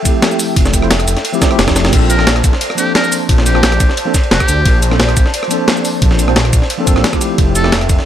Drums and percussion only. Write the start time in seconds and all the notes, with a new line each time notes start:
0.05 kick, closed hi-hat, ride, shaker
0.22 snare, closed hi-hat, ride
0.31 shaker
0.39 closed hi-hat, open hi-hat, shaker
0.56 kick, closed hi-hat, ride
0.65 snare, shaker
0.74 kick, closed hi-hat, ride, shaker
0.82 cross-stick
0.91 snare, closed hi-hat, ride
1.00 cross-stick, closed hi-hat, shaker
1.08 closed hi-hat, ride, shaker
1.17 snare, closed hi-hat
1.25 closed hi-hat, ride
1.34 shaker
1.42 kick, snare, closed hi-hat, ride, shaker
1.51 cross-stick, ride
1.59 snare, closed hi-hat, ride
1.68 kick, cross-stick, snare, ride, shaker
1.76 snare, closed hi-hat, ride, shaker
1.85 snare, ride
1.93 kick, closed hi-hat, crash, ride
2.10 closed hi-hat, ride, shaker
2.19 cross-stick, snare
2.27 snare, closed hi-hat, ride
2.36 cross-stick, closed hi-hat
2.44 kick, closed hi-hat, ride, shaker
2.53 snare
2.61 closed hi-hat, ride
2.70 cross-stick
2.78 closed hi-hat, ride, shaker
2.95 snare, closed hi-hat, ride
3.04 shaker
3.12 closed hi-hat, open hi-hat, shaker
3.29 kick, closed hi-hat, ride
3.38 snare
3.46 closed hi-hat, ride, shaker
3.55 cross-stick
3.63 snare, closed hi-hat, ride
3.72 cross-stick, closed hi-hat
3.80 kick, closed hi-hat, ride, shaker
3.89 snare
3.97 closed hi-hat, ride
4.14 kick, snare, closed hi-hat, ride, shaker
4.24 ride
4.31 snare, closed hi-hat, ride
4.40 kick, cross-stick, shaker
4.48 closed hi-hat, ride, shaker
4.65 kick, closed hi-hat, ride
4.82 closed hi-hat, ride, shaker
4.91 cross-stick, snare
5.00 snare, closed hi-hat, ride
5.09 cross-stick, closed hi-hat
5.17 kick, closed hi-hat, ride, shaker
5.26 snare
5.34 closed hi-hat, ride
5.43 cross-stick
5.51 closed hi-hat, ride, shaker
5.68 snare, closed hi-hat, ride
5.77 shaker
5.85 closed hi-hat, open hi-hat, shaker
6.02 kick, closed hi-hat, ride
6.11 snare
6.19 closed hi-hat, ride, shaker
6.28 cross-stick
6.36 snare, closed hi-hat, ride
6.45 cross-stick, closed hi-hat
6.53 kick, closed hi-hat, ride, shaker
6.62 snare
6.70 closed hi-hat, ride
6.87 kick, closed hi-hat, ride, shaker
6.96 cross-stick, snare
7.04 snare, closed hi-hat, ride
7.13 kick, cross-stick, shaker
7.21 closed hi-hat, ride, shaker
7.38 kick, closed hi-hat, ride
7.55 closed hi-hat, ride, shaker
7.64 cross-stick, snare
7.72 snare, closed hi-hat, ride
7.81 cross-stick, closed hi-hat
7.89 kick, closed hi-hat, ride, shaker
7.99 snare